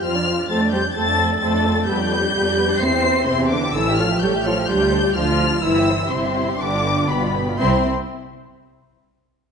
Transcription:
X:1
M:4/4
L:1/16
Q:1/4=127
K:C
V:1 name="Violin section"
f'4 a'2 g'2 a'4 a'4 | g'8 c''4 c'2 d'2 | e'2 f'2 g'2 f'2 g'4 f'4 | e'4 c'4 d'4 b4 |
c'2 z12 z2 |]
V:2 name="Violin section"
[Cc] [Dd] [Cc] [Dd] [Cc] [Dd] [Cc] [Dd] [Cc] [Dd] [Cc] [Dd] [Cc] [Dd] [Cc] [Dd] | [B,B] [Dd] [B,B] [Dd] [B,B] [Dd] [B,B] [Dd] [Ec] [Ge] [Ec] [Ge] [Ec] [Ge] [Ec] [Ge] | [A^c] [Ge] [Ac] [Ge] [Ac] [Ge] [Ac] [Ge] [D=c] [Fd] [Dc] [Fd] [Dc] [Fd] [Dc] [Fd] | [Ec] [Ge] [Ec] [Ge] [Ec] [Ge] [Ec] [Ge] [GB] [Fd] [GB] [Fd] [GB] [Fd] [GB] [Fd] |
[Ec]2 z12 z2 |]
V:3 name="Viola section"
F4 A2 G2 A4 A4 | G8 c4 C2 D2 | E2 F2 G2 F2 G4 F4 | E4 C4 D4 B,4 |
C2 z12 z2 |]
V:4 name="Cello section" clef=bass
F,4 A,2 G,2 A,4 A,4 | G,8 C4 C,2 D,2 | E,2 F,2 G,2 F,2 G,4 F,4 | E,4 C,4 D,4 B,,4 |
C2 z12 z2 |]
V:5 name="Double bass section" clef=bass
F,,4 F,,4 F,,4 F,,4 | F,,4 F,,4 E,,4 E,,4 | A,,,4 A,,,4 D,,4 D,,4 | G,,,4 G,,,4 G,,,4 G,,,4 |
C,,2 z12 z2 |]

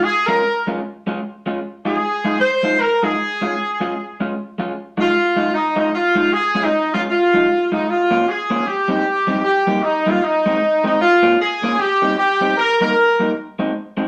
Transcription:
X:1
M:4/4
L:1/16
Q:"Swing" 1/4=153
K:Fm
V:1 name="Horn section"
A2 B4 z8 z2 | z2 A6 c4 B2 A2- | A8- A2 z6 | z2 F6 E2 E2 F4 |
A3 E3 F2 F6 E2 | F4 A4 G8 | G4 E2 F2 E6 E2 | F4 A4 G4 G4 |
B2 B6 z8 |]
V:2 name="Clean electric guitar"
z2 [A,DF]2 z2 [A,DF]2 z2 [A,DF]2 z2 [A,DF]2 | z2 [A,EF]2 z2 [A,EF]2 z2 [A,EF]2 z2 [A,EF]2 | z2 [A,DF]2 z2 [A,DF]2 z2 [A,DF]2 z2 [A,DF]2 | z2 [A,EF]2 z2 [A,EF]2 z2 [A,EF]2 z2 [A,EF]2 |
z2 [A,DF]2 z2 [A,DF]2 z2 [A,EF]2 z2 [A,EF]2 | z2 [B,DF]2 z2 [B,DF]2 z2 [G,CE]2 z2 [G,CE]2 | z2 [G,B,E]2 z2 [G,B,E]2 z2 [A,CE]2 z2 [A,CE]2 | z2 [B,DF]2 z2 [B,DF]2 z2 [G,CE]2 z2 [G,CE]2 |
z2 [G,B,E]2 z2 [G,B,E]2 z2 [A,CE]2 z2 [A,CE]2 |]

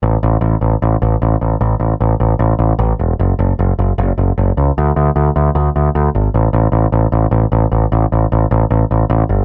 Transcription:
X:1
M:4/4
L:1/8
Q:1/4=152
K:A
V:1 name="Picked electric bass" clef=bass
A,,, A,,, A,,, A,,, A,,, A,,, A,,, A,,, | A,,, A,,, A,,, A,,, A,,, A,,, A,,, E,,, | F,,, F,,, F,,, F,,, F,,, F,,, F,,, C,, | D,, D,, D,, D,, D,, D,, D,, G,,, |
A,,, A,,, A,,, A,,, A,,, A,,, A,,, A,,, | A,,, A,,, A,,, A,,, A,,, A,,, A,,, =G,,, |]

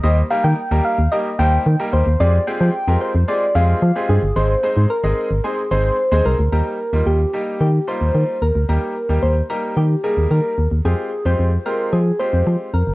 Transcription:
X:1
M:4/4
L:1/16
Q:1/4=111
K:Eb
V:1 name="Soft synth lead"
e2 f g3 f2 e2 g4 c2 | d2 g4 c2 d2 f4 A2 | c4 B4 A2 c4 B2 | B4 G4 G2 c4 B2 |
B4 c2 B2 G2 A2 B3 z | A3 c3 B2 A2 c4 B2 |]
V:2 name="Grand piano"
[G,B,EGc] z [G,B,EGB]2 z [G,B,EGB]2 z [G,B,EGB] z [G,B,EGc]2 z [G,B,EGB]2 z | [A,CFGA] z [A,CFGA]2 z [A,CFGB]2 z [A,CFGA] z [A,CFGA]2 z [A,CFGA]2 z | [A,CEAc] z [A,CEAc]2 z [A,CEAe]2 z [A,CEAc] z [A,CEAc]2 z [A,CEAc]2 z | [G,B,EG]2 z [G,B,EF]2 z [G,B,EG]2 z2 [G,B,EF]4 z2 |
[G,B,EG]2 z [G,B,EG]2 z [G,B,EG]2 z2 [G,B,EB]4 z2 | [A,CFG]2 z [A,CFG]2 z [A,CFG]2 z2 [A,CFG]4 z2 |]
V:3 name="FM bass" clef=bass
E,,2 z E, z E,, z E,, z2 E,,2 E, z E,, E,, | F,,2 z F, z F,, z F,, z2 F,,2 F, z G,, G,,, | A,,,2 z A,, z A,,, z A,,, z2 A,,,2 z E,, C,, D,, | E,, z2 E,, E,,2 z2 E,2 z E,, E, z E,, D,, |
E,, z2 E,, E,,2 z2 E,2 z E,, E, z E,, E,, | F,, z2 F,, F,,2 z2 F,2 z F,, F, z F,, G,,, |]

